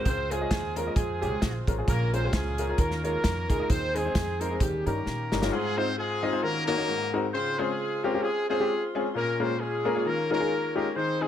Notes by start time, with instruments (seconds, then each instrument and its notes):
Already playing: alto saxophone C5
0.05 upright bass C#2, grand piano C#3, horn section C4 F4 G#4 C5, kick, closed hi-hat
0.31 grand piano G#3 C#4 F4 C5, horn section G#3 C4 F4 G#4, alto saxophone G#4, closed hi-hat
0.41 grand piano G#3 C#4 F4 D#5
0.51 upright bass D#2, kick, snare, closed hi-hat
0.76 grand piano G#3 C#4 F4 A#4, horn section A#3 A#4, alto saxophone A#4, closed hi-hat
0.86 grand piano G#3 C#4 F4 D#5
0.96 upright bass F2, horn section G#3 C4 F4 G#4, alto saxophone G#4, kick, closed hi-hat
1.21 upright bass C#2, grand piano G#3 C#4 F4 G4, horn section G#3 C4 F4 G#4, alto saxophone G#4, closed hi-hat
1.42 upright bass A#1, kick, snare, closed hi-hat
1.67 upright bass A1, grand piano G#3 C#4 F4 A#4, kick, closed hi-hat
1.78 grand piano G#3 C#4 F4 G#4
1.88 upright bass A#1, grand piano A#2, horn section A#3 C#4 F4 A#4, alto saxophone A#4, kick, closed hi-hat
2.13 grand piano G#3 C#4 F4 A#4, horn section C4 C5, alto saxophone C5, closed hi-hat
2.23 grand piano G#3 C#4 F4 C5, alto saxophone G4
2.33 upright bass C#2, horn section G#3 C#4 F4 G#4, alto saxophone G#4, kick, snare, closed hi-hat
2.58 grand piano G#3 C#4 F4 A#4, closed hi-hat
2.69 grand piano G#3 C#4 F4 A#4
2.78 upright bass D#2, grand piano D#3, horn section A#3 C#4 F4 A#4, alto saxophone A#4, kick, closed hi-hat
2.91 snare
3.04 grand piano G#3 D#4 F4 C#5, horn section A#3 C#4 F4 A#4, alto saxophone A#4, closed hi-hat
3.24 upright bass F2, kick, snare, closed hi-hat
3.49 upright bass D2, grand piano G#3 D#4 F4 G#4, alto saxophone A#4, kick, closed hi-hat
3.59 grand piano G#3 D#4 F4 D#5
3.69 upright bass D#2, grand piano D#3, horn section C4 D#4 G#4 C5, alto saxophone C5, kick, closed hi-hat
3.95 grand piano G#3 C4 D#4 C5, horn section G#3 C4 D#4 G#4, alto saxophone G#4, closed hi-hat
4.05 grand piano G#3 C4 D#4 C5
4.15 upright bass F2, kick, snare, closed hi-hat
4.40 grand piano G#3 C4 D#4 C5, horn section A#3 A#4, alto saxophone A#4, closed hi-hat
4.51 grand piano G#3 C4 D#4 G#4
4.60 upright bass D#2, grand piano D#3, horn section G3 A#3 C#4 G4, alto saxophone G4, kick, closed hi-hat
4.86 upright bass G2, grand piano G3 C#4 D#4 A#4, horn section A#3 C#4 G4 A#4, alto saxophone A#4, closed hi-hat
5.06 upright bass A#2, snare
5.32 upright bass G1, grand piano G3 C#4 D#4 A#4, snare
5.42 grand piano G3 C#4 D#4 F4, snare
5.52 grand piano G#2, horn section G#3 C4 F4 G#4
5.76 grand piano G#3 C4 D#4 F4 C5, horn section C4 C5
5.97 horn section G#3 C4 F4 G#4
6.23 grand piano G#3 C4 D#4 F4 D#5
6.33 grand piano G#3 C4 D#4 F4 C5
6.42 grand piano D#3, horn section A#3 C#4 F#4 A#4
6.67 horn section A#3 D#4 F#4 A#4, grand piano A#3 C#4 D#4 F#4 C#5
6.77 grand piano A#3 C#4 D#4 F#4 C#5
6.89 grand piano G#2
7.13 grand piano G#3 C4 D#4 F#4 A#4
7.33 grand piano C#3, horn section C4 F4 G#4 C5
7.58 horn section G#3 C4 F4 G#4, grand piano G#3 C4 C#4 F4 C5
8.03 grand piano G#3 C4 C#4 F4 G4, horn section A#3 A#4
8.14 grand piano G#3 C4 C#4 F4 G4
8.23 horn section G#3 C4 F4 G#4
8.49 horn section G#3 C4 F4 G#4, grand piano G#3 C4 C#4 F4 C5
8.60 grand piano G#3 C4 C#4 F4 G4
8.95 grand piano G#3 C4 C#4 F4 G#4
9.14 grand piano A#2, horn section A#3 C#4 F4 A#4
9.40 grand piano G#3 A#3 C#4 F4 A#4, horn section C4 C5
9.60 horn section G#3 C#4 F4 G#4
9.85 grand piano G#3 A#3 C#4 F4 A#4
9.95 grand piano G#3 A#3 C#4 F4 C#5
10.05 grand piano D#3, horn section A#3 C#4 F4 A#4
10.30 grand piano G#3 C#4 D#4 F4 A#4, horn section A#3 C#4 F4 A#4
10.40 grand piano G#3 C#4 D#4 F4 G#4
10.75 grand piano G#3 C#4 D#4 F4 G4, horn section A#3 A#4
10.96 grand piano D#3, horn section C4 D#4 G#4 C5
11.21 horn section G#3 C4 D#4 G#4, grand piano C4 D#4 G#4